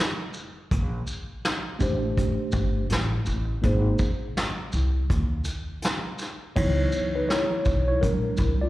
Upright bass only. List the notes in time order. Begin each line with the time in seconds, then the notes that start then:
0.71 A#1
1.81 A1
2.54 G1
2.91 A1
3.27 A1
3.64 G#1
4.74 C2
5.10 D#2
6.57 C#2
7.66 B1
8.03 A#1
8.39 C2